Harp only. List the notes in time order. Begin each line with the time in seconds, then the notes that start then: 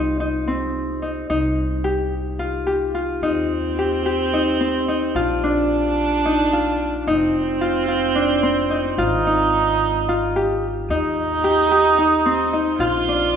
Already playing: C4 D#4 F4 G4
0.20 D#4
0.47 C4
1.02 D#4
1.30 D#4
1.84 G4
2.39 F4
2.67 G4
2.94 F4
3.23 D#4
3.79 G4
4.06 G4
4.33 D#4
4.60 C4
4.88 D#4
5.16 F4
5.44 D4
6.25 D#4
6.53 F4
7.07 D#4
7.61 F4
7.88 F4
8.15 D4
8.43 C4
8.70 D#4
8.98 F4
9.27 D#4
10.09 F4
10.36 G4
10.90 D#4
11.44 G4
11.71 G4
11.98 D#4
12.26 C4
12.53 D#4
12.80 F4
13.08 D4